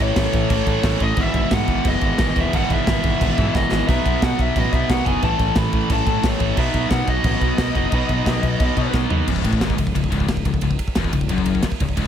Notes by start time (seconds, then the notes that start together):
Already playing: A2 E3 A3 C#4 E4 A4
0.00 A1 C#5, crash
0.16 A1, kick, snare, crash
0.33 A1, kick, crash
0.49 A1 A2 E3 A3 C#4 E4 A4, kick, crash
0.66 A2 E3 A3, kick, crash
0.82 A1 A2 E3 A3 C#5, kick, snare, crash
0.98 A1 A2 E3 A3 D#5, kick, crash
1.15 G#1 E2 B2 E3 G#3 B3 E4, kick, crash
1.21 E5
1.34 G#1, kick, crash
1.51 G#2 F#5, kick, snare, crash
1.68 G#1, kick, crash
1.84 F#1 E2 B2 E3 G#3 B3 E4, kick, crash
1.88 D#5
2.01 G#1 E2 B2 E3, kick, crash
2.18 G#1 E2 B2 E3, kick, snare, crash
2.35 D#1 E2 B2 E3, kick, crash
2.40 E5
2.52 G#1 E2 B2 E3 G#3 B3 E4 F#5, kick, crash
2.70 G#1 E5, kick, crash
2.87 G#1, kick, snare, crash
3.03 G#1, kick, crash
3.20 G#1 E2 B2 E3 G#3 B3 E4, kick, crash
3.38 E2 G#2 B2 E3, kick, crash
3.55 G#1 E2 B2 E3 D#5, kick, snare
3.71 G#1 E2 B2 E3 D#5, snare
3.87 B1 B2 F#3 B3 D#4 F#4 E5, kick, crash
3.91 B4
4.05 B1, kick, crash
4.22 B2 F#5, kick, snare, crash
4.39 B1 E5, kick, crash
4.55 A1 B2 F#3 B3 D#4 F#4 B4 D#5, kick, crash
4.72 B1 B2 F#3 B3 E5, kick, crash
4.88 B1 B2 F#3 B3 F#5, kick, snare, crash
5.04 F#1 B2 F#3 B3 G#5, kick, crash
5.21 A1 A2 E3 A3 C#4 E4 A5, kick, crash
5.26 A4
5.39 A1, kick, crash
5.56 A1 B5, kick, snare, crash
5.72 A1, kick, crash
5.90 A1 A2 E3 A3 C#4 E4 A4 A5, kick, crash
6.06 A2 E3 A3, kick, crash
6.24 A1 A2 E3 A3 C#5, kick, snare, crash
6.39 A1 A2 E3 A3, kick, crash
6.56 B1 B2 F#3 B3 D#4 F#4 B4 E5, kick, crash
6.60 B3
6.74 B1, kick, crash
6.90 B2 F#5, kick, snare, crash
7.08 B1 D#5, kick, crash
7.24 A1 B2 F#3 B3 D#4 F#4 B4, kick, crash
7.41 B1 B2 F#3 B3, kick, crash
7.58 B1 B2 F#3 B3, kick, snare, crash
7.74 F#1 B2 F#3 B3, kick, crash
7.91 B1 B2 F#3 B3 D#4 F#4, kick, crash
7.95 B4
8.09 B1, kick, crash
8.26 B1, kick, snare, crash
8.43 B1, kick, crash
8.60 B1 B2 F#3 B3 D#4 F#4 B4, kick, crash
8.76 B2 F#3 B3, kick, crash
8.94 B1 B2 F#3 B3, kick, snare
9.10 D#2 B2 F#3 B3, floor tom
9.28 C#1 C#2, kick, crash
9.36 kick
9.44 A1 A2, kick, ride
9.53 kick
9.60 G#1 G#2, kick, snare, ride
9.70 kick
9.77 C#1 C#2, kick, ride
9.87 kick
9.95 C#1 C#2, kick, ride
10.04 kick
10.11 C#1 C#2, kick, ride
10.20 kick
10.28 C#1 C#2, kick, snare, ride
10.37 kick
10.45 C#1 C#2, kick, ride
10.54 kick
10.61 C#1 C#2, kick, ride
10.71 kick
10.79 kick, ride
10.88 kick
10.95 E1 E2, kick, snare, ride
11.04 kick
11.13 C#1 C#2, kick, ride
11.21 kick
11.29 F#1 F#2, kick, ride
11.38 kick
11.46 kick, ride
11.55 kick
11.63 muted picked electric bass stroke, muted distorted electric guitar stroke, muted overdriven electric guitar stroke, kick, snare, ride
11.72 kick
11.80 C#1 C#2, kick, ride
11.89 kick
11.97 C#1 C#2, kick, ride